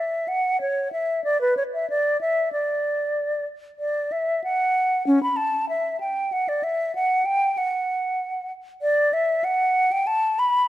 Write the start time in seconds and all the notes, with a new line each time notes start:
Already playing: E5
0.28 F#5
0.61 C#5
0.92 E5
1.24 D5
1.41 B4
1.57 C#5
1.74 E5
1.90 D5
2.21 E5
2.53 D5
3.79 D5
4.12 E5
4.44 F#5
5.07 C#4
5.23 B5
5.37 A5
5.69 E5
6.00 G5
6.32 F#5
6.49 D5
6.63 E5
6.95 F#5
7.25 G5
7.58 F#5
8.82 D5
9.13 E5
9.44 F#5
9.92 G5
10.07 A5
10.39 B5